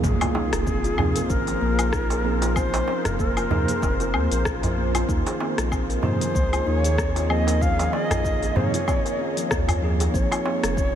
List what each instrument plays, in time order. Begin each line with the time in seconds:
Already playing: analog synth pad A#3 F4 G#4
0.04 sub bass A#1, kalimba A#3, native american-style wooden flute G#4, kick, impact, cabasa
0.21 kalimba F4, open hi-hat, darbuka tek, cabasa, low woodblock
0.35 kalimba D#4, darbuka tek
0.53 sub bass F1, kalimba G#4, cross-stick, open hi-hat, cabasa
0.67 kalimba C4, kick, cabasa
0.84 kalimba F4, open hi-hat, cabasa
0.97 sub bass D#2, tine electric piano C3 F3 A#3 D#4 G#4, kalimba C4, darbuka tek, darbuka dum, low woodblock
1.13 kalimba A#4, analog synth pad C5, open hi-hat, cabasa
1.30 sub bass G#1, kalimba C#4, native american-style wooden flute A#4, kick, cabasa
1.47 kalimba F3, open hi-hat, darbuka ka, cabasa
1.61 sub bass A#1, kalimba A#3
1.79 kalimba F4, open hi-hat, cabasa, low woodblock
1.93 kalimba D#4, kick, cross-stick, cabasa
2.10 kalimba G#4, open hi-hat, darbuka tek, cabasa
2.23 tine electric piano F3 A#3 D#4 G#4, kalimba C4
2.42 kalimba F4, open hi-hat, darbuka ka, cabasa
2.56 kalimba C4, native american-style wooden flute C5, kick, cabasa, low woodblock
2.74 kalimba A#4, open hi-hat, darbuka tek, cabasa
2.88 kalimba C#4, darbuka tek
3.05 sub bass F1, kalimba F3, native american-style wooden flute A#4, cross-stick, open hi-hat, darbuka dum, cabasa
3.19 kalimba A#3, native american-style wooden flute A#4, kick, cabasa
3.37 kalimba F4, open hi-hat, cabasa, low woodblock
3.50 sub bass D#2, tine electric piano C3 F3 A#3 D#4 G#4, kalimba D#4, darbuka tek, darbuka dum
3.68 kalimba G#4, open hi-hat, cabasa
3.82 sub bass F1, kalimba C4, kick, darbuka tek, cabasa
4.00 kalimba F4, open hi-hat, darbuka ka, cabasa
4.14 sub bass D#2, kalimba C4, low woodblock
4.31 sub bass A#1, kalimba A#4, open hi-hat, cabasa
4.45 kalimba C#4, kick, cross-stick, cabasa
4.63 kalimba F3, open hi-hat, darbuka dum, cabasa
4.77 kalimba A#3
4.95 kalimba F4, open hi-hat, darbuka ka, cabasa, low woodblock
5.08 sub bass D#2, analog synth pad D#3, kalimba D#4, kick, cabasa
5.26 kalimba G#4, open hi-hat, darbuka tek, cabasa
5.40 kalimba C4, darbuka tek
5.58 sub bass A#1, kalimba F4, cross-stick, open hi-hat, cabasa
5.72 kalimba C4, kick, cabasa, low woodblock
5.90 kalimba A#4, open hi-hat, cabasa
5.96 analog synth pad G#4
6.02 sub bass G#2, tine electric piano C3 F3 A#3 D#4 G#4, kalimba C#4, native american-style wooden flute C5, darbuka tek, darbuka dum
6.21 kalimba F3, open hi-hat, cabasa
6.35 sub bass C#2, kalimba A#3, kick, cabasa
6.53 kalimba F4, open hi-hat, darbuka ka, cabasa, low woodblock
6.67 sub bass D#2, kalimba D#4, native american-style wooden flute C#5
6.84 kalimba G#4, open hi-hat, cabasa
6.98 kalimba C4, kick, cross-stick, cabasa
7.16 kalimba F4, open hi-hat, darbuka tek, cabasa
7.29 tine electric piano F3 A#3 D#4 G#4, kalimba C4, native american-style wooden flute D#5, low woodblock
7.47 kalimba A#4, open hi-hat, darbuka ka, cabasa
7.61 kalimba C#4, native american-style wooden flute F5, kick, cabasa
7.79 kalimba F3, open hi-hat, darbuka tek, cabasa
7.93 kalimba A#3, native american-style wooden flute D#5, darbuka tek
8.10 sub bass A#1, kalimba F4, cross-stick, open hi-hat, darbuka dum, cabasa, low woodblock
8.25 kalimba D#4, kick, cabasa
8.42 kalimba G#4, open hi-hat, cabasa
8.55 sub bass G#2, tine electric piano C3 F3 A#3 D#4 G#4, kalimba C4, native american-style wooden flute C#5, darbuka tek, darbuka dum
8.74 kalimba F4, open hi-hat, cabasa
8.87 kalimba C4, kick, darbuka tek, cabasa, low woodblock
9.05 kalimba A#4, open hi-hat, darbuka ka, cabasa
9.19 kalimba C#4
9.37 kalimba F3, open hi-hat, cabasa
9.51 sub bass D#2, kalimba A#3, kick, cross-stick, cabasa
9.68 kalimba F4, open hi-hat, darbuka dum, cabasa, low woodblock
9.81 tine electric piano F3 A#3 D#4 G#4, kalimba D#4
10.00 kalimba G#4, open hi-hat, darbuka ka, cabasa
10.14 sub bass A#1, kalimba C4, native american-style wooden flute C#5, kick, cabasa
10.32 kalimba F4, open hi-hat, darbuka tek, cabasa, low woodblock
10.46 kalimba C4, darbuka tek
10.63 sub bass F1, kalimba A#4, cross-stick, open hi-hat, cabasa
10.77 kalimba C#4, kick, cabasa
10.87 analog synth pad C#5